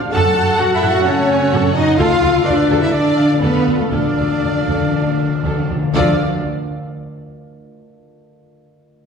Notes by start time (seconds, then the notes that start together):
Already playing: D3 A3 D4 G4 A4 D5 F5 A5
0.01 F4
0.11 F#2 F#4 A4 F#5 A5
0.24 A3
0.36 F#2 F#4 A4
0.48 F#4
0.57 F#2 C#4 F#4 A4 F#5 A5
0.71 E4 E5 F#5
0.76 E4
0.82 F#2 A4
0.88 F#4 F#5
0.94 F#4
1.00 C#4
1.05 C#3 C#4 C#5 A5
1.19 A3
1.29 A4 G#5
1.42 F#4
1.52 F#2 A4 F#5 A5
1.65 F#5
1.73 F#2 D#4 F#4 A4 D#5
1.87 F#4
1.97 D2 D3 F4 A4 F5
2.07 D3 A3
2.14 D3
2.22 D2 D3 F4 A4
2.29 D3
2.36 D3
2.44 D2 D3 D4 B4 D5 E5 A5
2.52 D3
2.57 D3 D5
2.66 D2 D3 A4
2.74 D3
2.79 D3 E4 F4 E5
2.88 D3 D4 A4 D5
2.92 D3 D4 D5
3.04 A3
3.11 D3
3.17 D3 A4 F5
3.25 D3 F4
3.34 D3
3.40 D2 D3 B3 A4 B4 A5
3.54 D3 F5
3.66 D2 D3 F4 A4
3.74 D3
3.78 D3 A3 F4 A4
3.90 D2 D3 D4 A4 D5 F5
3.98 D3
4.04 D3 A3
4.14 D2 D3 F4 A4
4.22 D3
4.30 D3 F4
4.38 D3
4.42 D2 D4 A5
4.46 D3
4.55 D3 F5
4.62 D3
4.68 D2 D3 A4
4.77 D3 F4
4.85 D3
4.94 D3 D4
5.01 D3
5.06 D3 A3
5.19 D3 A4
5.27 D3 F4
5.35 D3
5.43 D2 D3 A4 A5
5.51 D3
5.57 D3 F5
5.68 D2 D3 F4 A4
5.76 D3
5.83 D3 F4
5.92 D2 D3 F3 A3 D4 F4 A4 D5 F5
5.97 A4 F5